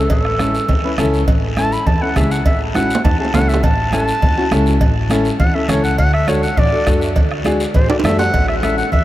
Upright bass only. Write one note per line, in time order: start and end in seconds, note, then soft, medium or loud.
0.00 0.10 C#2 medium
0.10 0.57 A1 loud
0.69 0.81 E2 medium
0.98 1.28 C#2 loud
1.28 1.75 A1 loud
1.87 1.98 E2 medium
2.16 2.46 C#2 medium
2.46 2.93 A1 loud
3.05 3.16 E2 medium
3.34 3.63 C#2 medium
3.63 4.10 A1 loud
4.23 4.34 E2 medium
4.52 4.81 C#2 loud
4.81 5.28 A1 loud
5.40 5.52 E2 loud
5.69 5.99 C#2 medium
5.99 6.46 D2 medium
6.57 6.69 A1 loud
6.87 7.16 F#2 loud
7.16 7.63 D2 loud
7.75 7.87 A1 medium
8.04 8.28 F#2 loud
8.34 8.81 A1 medium
8.93 9.04 E2 medium